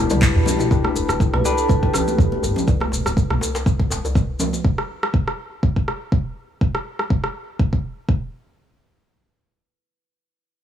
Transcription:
Already playing: string section D3 G3 B3, tine electric piano D4 G4 B4
0.10 synth pluck G3, kalimba E4, mid tom, djembe bass, maracas
0.21 kick, clap, muted conga, djembe tone, maracas
0.35 detuned saw bass E2, synth pluck B2
0.46 high conga, djembe tone, low conga, maracas
0.59 synth pluck B2, kalimba E4, muted conga, maracas
0.71 detuned saw bass E1, tine electric piano D4 G4 B4, kick, djembe tone, djembe bass, maracas
0.84 cross-stick, high conga
0.95 detuned saw bass E1, djembe tone, maracas
1.09 detuned saw bass D1, cross-stick, muted conga, maracas
1.20 kick, djembe tone, maracas
1.34 detuned saw bass B1, kalimba B4, cross-stick, high conga
1.44 tine electric piano D4 G4 B4, muted conga, djembe tone, maracas
1.58 kalimba A4, maracas
1.68 kalimba B4, kick, djembe tone, maracas
1.83 kalimba B4, kick, muted conga
1.94 cross-stick, djembe slap, djembe tone, low conga, maracas
2.08 high conga, maracas
2.18 detuned saw bass E2, kick, muted conga, djembe tone, maracas
2.32 high conga
2.43 detuned saw bass G1, djembe tone, maracas
2.56 muted conga, high conga, low conga, maracas
2.67 kick, djembe tone, djembe bass, maracas
2.80 cross-stick, high conga
2.92 detuned saw bass E1, djembe tone, maracas
3.06 detuned saw bass D1, cross-stick, muted conga, maracas
3.17 kick, djembe tone, maracas
3.30 detuned saw bass B1, cross-stick, high conga
3.41 djembe tone, maracas
3.55 djembe slap, maracas
3.66 kick, djembe tone, maracas
3.80 kick, muted conga
3.90 detuned saw bass E1, djembe slap, djembe tone, maracas
4.05 djembe bass, maracas
4.15 kick, muted conga, djembe tone, maracas
4.39 high conga, djembe tone, low conga, maracas
4.53 muted conga, maracas
4.65 kick
4.78 cross-stick
5.03 cross-stick
5.14 kick
5.28 cross-stick
5.63 kick
5.76 kick
5.88 cross-stick
6.12 kick
6.61 kick
6.75 cross-stick
6.99 cross-stick
7.10 kick
7.24 cross-stick
7.60 kick
7.73 kick
8.09 kick

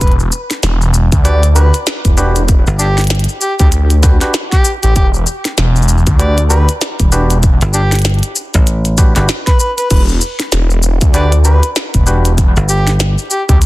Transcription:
0.01 detuned saw bass E1, harmonica B4, kick, closed hi-hat, shaker
0.07 closed hi-hat
0.12 closed hi-hat
0.20 shaker
0.32 shaker
0.51 snare, closed hi-hat, shaker
0.63 detuned saw bass E1, snare, closed hi-hat, shaker
0.82 shaker
0.94 shaker
1.12 detuned saw bass D2, kick, closed hi-hat, shaker
1.25 clav D4 F#4 G4 B4, harmonica D5, closed hi-hat, shaker
1.43 closed hi-hat, shaker
1.56 clav D4 F#4 G4 B4, harmonica B4, shaker
1.74 closed hi-hat, shaker
1.87 snare, closed hi-hat, shaker
2.05 detuned saw bass E1, kick, closed hi-hat, shaker
2.17 clav D4 F#4 G4 B4, shaker
2.36 closed hi-hat, shaker
2.49 kick, closed hi-hat, shaker
2.67 slap bass G1, shaker
2.79 harmonica D4 G4, shaker
2.98 snare, closed hi-hat, shaker
3.01 closed hi-hat
3.04 closed hi-hat
3.07 snare, closed hi-hat
3.10 closed hi-hat, shaker
3.15 closed hi-hat
3.19 closed hi-hat
3.24 closed hi-hat
3.29 shaker
3.41 harmonica G4, shaker
3.60 detuned saw bass D2, harmonica G4, kick, closed hi-hat, shaker
3.72 closed hi-hat, shaker
3.90 closed hi-hat, shaker
4.03 clav D4 F#4 G4 B4, kick, snare, shaker
4.21 clav D4 F#4 G4 B4, snare, closed hi-hat, shaker
4.34 snare, closed hi-hat, shaker
4.52 harmonica G4, kick, snare, closed hi-hat, shaker
4.65 shaker
4.83 detuned saw bass A1, harmonica G4, closed hi-hat, shaker
4.96 detuned saw bass E1, harmonica G4, kick, closed hi-hat, shaker
5.14 shaker
5.27 shaker
5.45 snare, closed hi-hat, shaker
5.58 detuned saw bass E1, snare, closed hi-hat, shaker
5.76 shaker
5.82 shaker
5.89 shaker
5.98 shaker
6.07 detuned saw bass D2, kick, closed hi-hat, shaker
6.19 clav D4 F#4 G4 B4, harmonica D5, closed hi-hat, shaker
6.38 closed hi-hat, shaker
6.50 clav D4 F#4 G4 B4, harmonica B4, shaker
6.69 closed hi-hat, shaker
6.81 snare, closed hi-hat, shaker
7.00 detuned saw bass E1, kick, closed hi-hat, shaker
7.12 clav D4 F#4 G4 B4, shaker
7.30 closed hi-hat, shaker
7.43 kick, closed hi-hat, shaker
7.61 slap bass G1, closed hi-hat, shaker
7.74 harmonica D4 G4, shaker
7.92 snare, closed hi-hat, shaker
7.95 closed hi-hat
7.99 closed hi-hat
8.02 snare, closed hi-hat
8.05 closed hi-hat, shaker
8.10 closed hi-hat
8.14 closed hi-hat
8.19 closed hi-hat
8.23 closed hi-hat, shaker
8.36 shaker
8.54 slap bass A1, kick, closed hi-hat, shaker
8.67 closed hi-hat, shaker
8.85 closed hi-hat, shaker
8.98 clav D4 F#4 G4 B4, kick, snare, shaker
9.16 slap bass G1, clav D4 F#4 G4 B4, snare, closed hi-hat, shaker
9.29 snare, closed hi-hat, shaker
9.47 harmonica B4, kick, snare, closed hi-hat, shaker
9.60 harmonica B4, shaker
9.78 harmonica B4, closed hi-hat, shaker
9.91 detuned saw bass E1, harmonica B4, kick, closed hi-hat, crash, shaker
10.09 shaker
10.21 shaker
10.40 snare, closed hi-hat, shaker
10.52 detuned saw bass E1, snare, closed hi-hat, shaker
10.70 shaker
10.83 shaker
11.01 detuned saw bass D2, kick, closed hi-hat, shaker
11.14 clav D4 F#4 G4 B4, harmonica B4 D5, closed hi-hat, shaker
11.32 closed hi-hat, shaker
11.45 clav D4 F#4 G4 B4, harmonica B4, shaker
11.63 closed hi-hat, shaker
11.76 snare, closed hi-hat, shaker
11.94 detuned saw bass E1, kick, closed hi-hat, shaker
12.07 clav D4 F#4 G4 B4, shaker
12.25 closed hi-hat, shaker
12.38 kick, closed hi-hat, shaker
12.56 slap bass G1, shaker
12.69 harmonica G4, shaker
12.87 snare, closed hi-hat, shaker
13.00 snare, closed hi-hat, shaker
13.18 shaker
13.31 harmonica G4, shaker
13.49 detuned saw bass D2, harmonica G4, kick, closed hi-hat, shaker
13.62 closed hi-hat, shaker

